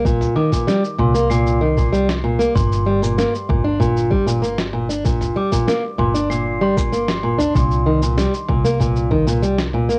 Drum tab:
SH |xx-xxx-xxx-xxx-x|xx-xxx--xx-xxx-x|xx-xx--xx--xxx-x|xx-xxx-xxx-xxx-x|
SD |----o--------o--|----o--------o--|----o--------o--|----o--------o--|
T2 |-o----o---------|------o---------|-o----o--------o|------o---------|
BD |o--o-------o----|o-----o-o-o-----|o--o-------o----|o-----o-o-o-----|